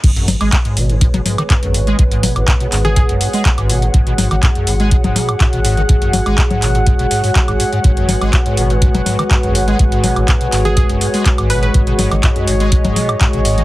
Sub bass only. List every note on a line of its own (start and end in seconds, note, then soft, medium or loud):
0.04 0.35 G#1 loud
0.41 0.49 G#1 medium
0.77 1.08 G#1 loud
1.14 1.22 F#1 loud
1.63 1.94 G#1 loud
1.99 2.30 G#1 loud
2.36 2.44 G#1 medium
2.72 3.04 G#1 loud
3.09 3.18 F#1 medium
3.58 3.89 G#1 loud
3.94 4.26 G#1 loud
4.31 4.40 G#1 loud
4.67 4.99 G#1 loud
5.04 5.13 F#1 loud
5.53 5.84 G#1 loud
5.89 6.21 G#1 loud
6.26 6.35 G#1 medium
6.62 6.94 G#1 loud
6.99 7.08 F#1 medium
7.48 7.57 G#1 loud
7.84 8.16 G#1 loud
8.21 8.30 G#1 medium
8.57 8.89 G#1 loud
8.95 9.03 F#1 loud
9.43 9.74 G#1 loud
9.79 10.11 G#1 loud
10.17 10.25 G#1 medium
10.53 10.84 G#1 loud
10.90 10.98 F#1 medium
11.38 11.69 G#1 loud
11.74 12.06 G#1 loud
12.12 12.20 G#1 medium
12.48 12.79 G#1 medium
12.85 12.93 F#1 medium
13.34 13.64 G#1 loud